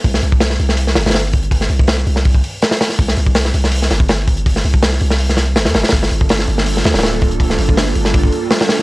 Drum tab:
HH |o---o---o---o---o---o-ooo---o-x-|o---o---o---o---o---o---o-o-o---|o---o---o---o---o---o---o---o-x-|o---o---o---o---o---o---o-o-o-oo|
SD |--o-----o-o---o---o-o-ooo-------|--o-----o-o---o---------o-o-o-o-|--o-----o-o---o---o-o---o-------|--o-----o-o---o---o-o---o-o-o-oo|
BD |o-----o---------------------o---|o-----o---------o-o-------------|o-----o---------------o-----o---|o-----o-------------------------|

HH |o---o---o---o---o---o-ooo---o-x-|o---o---o---o---o---o---o-o-o---|
SD |--o-----o-o---o---o-o-ooo-------|--o-----o-o---o---------o-o-o-o-|
BD |o-----o---------------------o---|o-----o---------o-o-------------|